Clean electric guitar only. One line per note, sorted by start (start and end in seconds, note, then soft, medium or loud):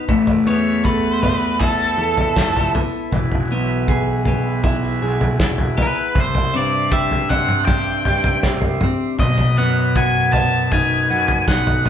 0.00 0.12 B3 medium
0.09 1.99 A3 medium
0.48 1.22 B3 medium
0.86 1.98 A4 medium
1.23 2.74 B3 medium
1.61 2.38 E4 medium
1.99 3.13 A4 medium
2.38 4.64 E4 medium
2.75 3.13 B3 medium
3.13 5.02 E3 medium
3.52 4.26 B3 medium
3.89 5.01 G#4 medium
4.27 5.76 B3 medium
4.64 5.38 E4 medium
5.02 6.16 G#4 medium
5.40 6.16 E4 medium
5.77 6.16 B3 medium
6.15 8.05 C3 medium
6.54 7.29 C4 medium
6.91 8.06 G4 medium
7.30 8.82 C4 medium
7.68 8.44 D4 medium
8.08 9.20 G4 medium
8.45 9.20 D4 medium
8.84 9.21 C4 medium
9.21 11.10 B2 medium
9.58 10.35 B3 medium
9.97 11.09 F#4 medium
10.35 11.86 B3 medium
10.73 11.47 D#4 medium
11.11 11.89 F#4 medium
11.48 11.89 D#4 medium